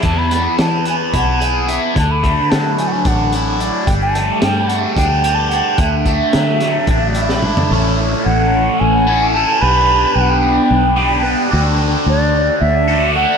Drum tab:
CC |x-------------|--------------|--------------|--------------|
HH |x-x-x-x-x-x-x-|x-x-x-x-x-x-x-|x-x-x-x-x-x-x-|x-x-x-x-x-x---|
SD |--o-o---------|----o---------|----o---------|----o-o----o--|
T2 |--------------|--------------|--------------|------------o-|
FT |--------------|--------------|--------------|-------------o|
BD |o-------o-----|o-o-----o-----|o-------o-----|o-o-----o-----|

CC |--------------|--------------|--------------|
HH |--------------|--------------|--------------|
SD |--------------|--------------|--------------|
T2 |--------------|--------------|--------------|
FT |--------------|--------------|--------------|
BD |--------------|--------------|--------------|